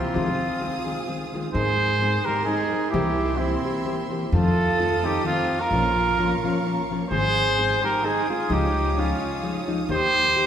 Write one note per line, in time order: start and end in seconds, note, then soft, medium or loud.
0.00 1.08 C4 medium
0.00 1.09 F4 medium
0.00 0.15 A#4 medium
0.00 0.15 E5 soft
0.00 0.14 C6 medium
0.14 0.30 F2 medium
0.14 0.32 F2 medium
0.14 0.30 C3 medium
0.14 0.30 D#3 medium
0.14 0.30 G#3 medium
0.14 0.30 C4 medium
0.14 0.30 F4 medium
0.14 1.54 G#4 medium
0.14 1.54 F5 medium
0.14 1.54 D#6 medium
0.61 0.77 D#3 medium
0.61 0.77 G#3 medium
0.61 0.77 C4 medium
0.61 0.77 F4 medium
0.86 0.99 D#3 medium
0.86 1.00 G#3 medium
0.86 1.00 C4 medium
0.86 1.00 F4 medium
1.07 1.23 D#3 medium
1.07 1.24 G#3 medium
1.07 1.24 C4 medium
1.07 1.24 F4 medium
1.33 1.46 D#3 medium
1.33 1.47 G#3 medium
1.33 1.47 C4 soft
1.33 1.47 F4 medium
1.53 2.15 G#2 loud
1.53 1.69 G#3 medium
1.53 1.70 C4 medium
1.53 1.70 D#4 medium
1.53 2.26 G#4 medium
1.53 1.70 A#4 medium
1.53 4.31 A#4 medium
1.53 2.27 C5 loud
1.53 2.93 G#5 medium
1.53 2.94 C6 medium
2.01 2.17 G#3 medium
2.01 2.17 C4 medium
2.01 2.17 D#4 medium
2.01 2.18 A#4 medium
2.24 2.40 G#3 medium
2.24 2.40 C4 medium
2.24 2.40 D#4 medium
2.24 2.45 G4 medium
2.24 2.44 A#4 medium
2.24 2.40 A#4 medium
2.44 2.63 G#3 medium
2.44 2.63 C4 medium
2.44 2.92 D#4 medium
2.44 2.63 D#4 medium
2.44 2.92 G#4 medium
2.49 2.64 A#4 medium
2.73 2.86 G#3 medium
2.73 2.86 C4 medium
2.73 2.86 D#4 medium
2.73 2.86 A#4 medium
2.90 3.54 C2 loud
2.90 3.09 C3 medium
2.90 3.09 E3 medium
2.90 3.37 E4 medium
2.90 3.39 G4 loud
2.94 3.10 A#3 medium
2.94 3.10 C4 medium
2.94 3.10 G4 medium
2.94 4.32 E5 medium
2.94 4.32 C6 medium
3.36 3.55 E3 medium
3.36 3.55 A#3 medium
3.36 4.10 C4 medium
3.36 4.11 E4 medium
3.40 3.56 C4 medium
3.40 3.56 G4 medium
3.64 3.77 E3 medium
3.64 3.78 A#3 medium
3.64 3.78 C4 medium
3.64 3.78 G4 medium
3.85 4.01 E3 medium
3.85 4.01 A#3 medium
3.85 4.01 C4 medium
3.85 4.02 G4 medium
4.10 4.24 E3 medium
4.10 4.24 A#3 medium
4.10 4.24 C4 medium
4.10 4.24 G4 medium
4.32 4.48 F2 medium
4.32 4.93 F2 loud
4.32 4.48 C3 medium
4.32 4.48 D#3 medium
4.32 4.48 A3 medium
4.32 4.48 C4 medium
4.32 4.48 F4 medium
4.32 5.06 F4 medium
4.32 5.70 A4 medium
4.32 5.07 A4 loud
4.32 7.09 F5 medium
4.32 5.71 D#6 medium
4.79 4.94 D#3 medium
4.79 4.94 A3 medium
4.79 4.94 C4 medium
4.79 4.95 F4 medium
5.03 5.16 D#3 medium
5.03 5.17 A3 medium
5.03 5.16 C4 medium
5.03 5.25 D#4 medium
5.03 5.17 F4 medium
5.03 5.26 G4 medium
5.24 5.40 D#3 medium
5.24 5.40 A3 medium
5.24 5.40 C4 medium
5.24 5.62 C4 medium
5.24 5.41 F4 medium
5.24 5.62 F4 loud
5.60 6.90 F4 medium
5.60 6.90 A#4 loud
5.71 6.32 A#1 loud
5.71 5.87 A#2 medium
5.71 5.87 F3 medium
5.71 5.88 A#3 medium
5.71 5.88 C#4 medium
5.71 5.88 F4 medium
5.71 7.11 A#4 medium
5.71 7.11 C#6 medium
6.19 6.34 F3 medium
6.19 6.34 A#3 medium
6.19 6.34 C#4 medium
6.19 6.34 F4 medium
6.43 6.56 F3 medium
6.43 6.57 A#3 soft
6.43 6.57 C#4 medium
6.43 6.57 F4 medium
6.65 6.81 F3 medium
6.65 6.81 A#3 medium
6.65 6.81 C#4 medium
6.65 6.81 F4 medium
6.91 7.03 F3 medium
6.91 7.04 A#3 soft
6.91 7.04 C#4 medium
6.91 7.04 F4 medium
7.10 7.72 G#1 medium
7.10 7.27 G#2 medium
7.10 7.27 D#3 medium
7.10 7.27 G#3 medium
7.10 7.27 C4 medium
7.10 7.27 D#4 medium
7.10 7.80 G#4 medium
7.10 7.27 G#4 medium
7.10 7.79 C5 loud
7.10 8.50 C5 medium
7.10 8.50 G#5 medium
7.10 10.46 D#6 medium
7.58 7.73 G#3 soft
7.58 7.74 C4 medium
7.58 7.74 D#4 medium
7.58 7.74 G#4 medium
7.83 7.96 G#3 medium
7.83 7.96 C4 medium
7.83 7.96 D#4 soft
7.83 8.05 G4 medium
7.83 7.97 G#4 soft
7.83 8.07 A#4 medium
8.04 8.20 G#3 medium
8.04 8.20 C4 medium
8.04 8.29 D#4 medium
8.04 8.20 D#4 medium
8.04 8.30 G#4 medium
8.04 8.21 G#4 medium
8.29 8.42 G#3 medium
8.29 8.43 C4 soft
8.29 8.43 D#4 medium
8.29 8.52 F4 medium
8.29 8.43 G#4 medium
8.29 8.54 G#4 medium
8.50 9.11 C#2 loud
8.50 8.66 C#3 medium
8.50 8.66 F3 medium
8.50 8.66 G#3 medium
8.50 8.66 D#4 medium
8.50 9.00 D#4 medium
8.50 8.66 F4 medium
8.50 9.01 G4 loud
8.50 9.89 C#5 medium
8.50 9.89 F5 medium
8.97 9.13 F3 medium
8.97 9.13 G#3 medium
8.97 9.70 C#4 medium
8.97 9.13 D#4 medium
8.97 9.13 F4 medium
8.97 9.70 F4 medium
9.43 9.59 F3 medium
9.43 9.59 G#3 medium
9.43 9.59 D#4 medium
9.43 9.59 F4 medium
9.67 9.81 F3 medium
9.67 9.81 G#3 medium
9.67 9.81 D#4 medium
9.67 9.82 F4 medium
9.89 10.46 D#2 loud
9.89 10.05 D#3 medium
9.89 10.05 A#3 medium
9.89 10.05 D#4 medium
9.89 10.06 G4 medium
9.89 10.46 A#4 medium
9.89 10.46 C5 loud
9.89 10.46 G5 medium
9.93 10.46 G4 medium
10.35 10.46 D#3 medium
10.35 10.46 A#3 medium
10.35 10.46 D#4 medium
10.35 10.46 G4 medium